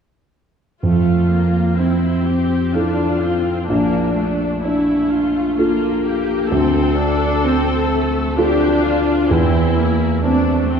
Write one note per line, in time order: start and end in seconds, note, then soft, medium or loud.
0.83 3.65 F2 soft
0.83 1.28 A3 soft
0.83 1.75 F4 soft
1.30 1.79 A#3 soft
1.77 2.73 C4 soft
1.77 3.31 C4 soft
1.77 2.26 E4 soft
2.26 2.74 G4 soft
2.73 3.21 D4 soft
2.73 3.65 E4 soft
2.73 3.68 F4 soft
2.73 3.65 A4 soft
3.21 3.68 C4 soft
3.68 6.47 A#1 soft
3.68 4.15 A#3 soft
3.68 4.61 D4 soft
4.15 4.62 A3 soft
4.63 5.55 A3 soft
4.63 6.14 D4 soft
4.63 5.09 E4 soft
5.10 5.55 F4 soft
5.56 6.50 A#3 soft
5.56 6.03 F4 soft
5.56 6.47 F4 soft
5.56 6.47 A4 soft
6.04 6.50 G4 soft
6.50 9.27 D2 soft
6.50 6.97 C4 soft
6.50 8.37 A4 soft
6.97 7.44 D4 soft
7.44 8.93 C4 soft
7.44 7.91 C4 soft
7.91 8.36 A3 soft
8.37 9.31 D4 soft
8.37 9.27 F4 soft
8.37 8.83 G4 soft
8.37 9.27 A4 soft
8.82 9.30 F4 soft
9.30 10.80 E2 soft
9.30 9.78 C4 soft
9.30 10.25 E4 soft
9.77 10.25 A#3 soft
10.23 10.80 A3 soft
10.23 10.80 C4 soft
10.23 10.71 D4 soft
10.71 10.80 C4 soft